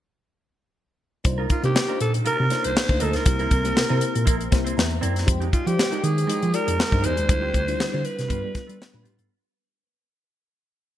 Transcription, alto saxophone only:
1.51 F4
1.65 G4
2.01 A4
2.26 A#4
2.65 C5
3.02 A4
3.16 A#4
5.53 F4
5.67 G4
6.04 G#4
6.54 A#4
7.05 C5
8.06 B4

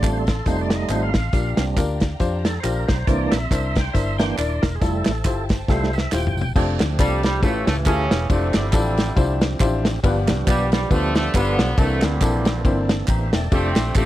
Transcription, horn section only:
6.99 G3
7.24 G3
7.42 C#3 E3 A3
7.68 A3
7.86 C#3 E3 G3 C#4
8.30 C3 D3 A3
8.56 C3 D3 G3
10.48 G3
10.72 G3
10.91 D3 F3 A3
11.16 A3
11.35 D3 F3 B3
11.78 D3 E3 A3
12.04 A#2 E3 G3
13.53 G3 A3 C4
13.96 G3 A3 C4

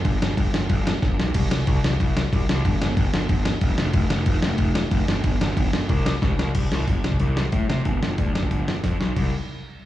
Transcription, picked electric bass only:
0.05 G1
0.22 G1
0.37 G1
0.55 G1
0.70 G1
1.03 G1
1.19 B1
1.35 C2
1.51 C2
1.68 C2
1.84 C2
2.01 C2
2.33 C2
2.51 C2
2.65 G1
2.82 G1
2.98 G1
3.14 G1
3.30 G1
3.62 E1
3.78 F1
3.94 F1
4.11 F1
4.26 F1
4.44 F1
4.59 F1
4.92 F1
5.08 G1
5.24 G1
5.41 G1
5.57 G1
5.73 G1
5.90 C2
6.22 C2
6.39 C2
6.55 C2
6.72 C2
6.87 G1
7.04 C2
7.20 C2
7.53 A2
7.70 C3
7.86 G1
8.02 G1
8.18 D2
8.34 G1
8.52 G1
8.84 F2
9.00 B1
9.17 C2

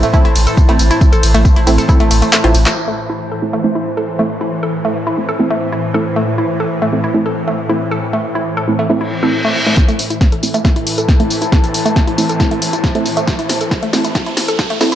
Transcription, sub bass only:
0.25 A1
0.36 A1
0.69 A1
0.79 A1
1.13 A1
1.23 A1
1.34 A1
1.56 A1
1.67 A1
2.00 A1
2.11 A1
2.44 A1
2.55 A1

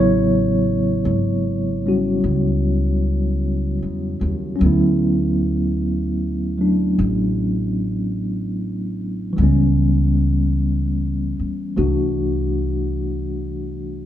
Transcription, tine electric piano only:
Already playing: C#3 F#3 B3 E4 C#5
1.86 G3 C#4 F#4
4.56 F#3 C#4
4.63 B3 E4
6.58 F#3 A3 D4
9.33 E3 G3
9.40 B3 C#4
11.77 E3 A3 D4 F#4

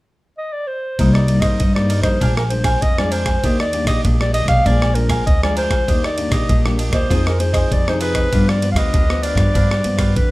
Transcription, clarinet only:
0.38 D#5
0.53 D5
0.68 C5
1.14 D5
1.41 D#5
1.75 D5
2.03 C5
2.37 A#4
2.50 C5
2.82 D#5
2.99 D5
3.12 C5
3.60 D5
3.88 D#5
4.21 D5
4.34 D#5
4.49 F5
4.66 D5
4.95 A#4
5.27 D#5
5.44 D5
5.58 C5
6.05 D5
6.33 D#5
6.94 C5
7.28 A#4
7.40 C5
7.73 D5
7.89 C5
8.02 B4
8.49 D5
8.72 F5
8.78 D#5
9.23 D5
10.17 B4

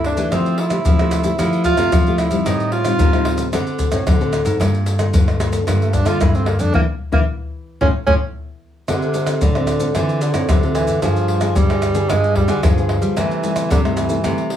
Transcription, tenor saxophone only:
0.06 D4
0.34 C4
0.60 E4
1.40 E4
1.65 F4
2.19 E4
2.46 D#4
2.72 F4
5.82 A3
5.93 D4
6.07 F4
6.22 E4
6.35 C4
6.47 A#3
6.60 D4
6.75 A#3
7.13 A#3
7.81 C#4
8.06 C#4
8.88 C3
9.42 D3
9.95 E3
10.22 D3
10.49 C3
10.74 E3
11.02 F3
11.56 G3
12.10 G#3
12.36 G3
12.63 F3
13.17 E3
13.71 D3
13.90 D#3
13.96 E3

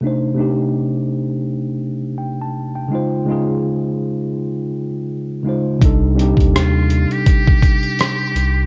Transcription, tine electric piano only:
0.01 C3 A3 D4
0.05 D#4 C5
0.34 C3 A3 D4
0.39 D#4 G4
2.18 G5
2.42 A5
2.76 G5
2.88 C#3 G#3 D#4
2.93 F4 C5
3.25 C#3 G#3 D#4
3.30 F4 G#4
5.43 C#3 G#3 D#4
5.47 F4 C5
5.79 C3 G3 D4
5.84 D#4 A4
6.15 C3 G3 D4
6.19 D#4 G4

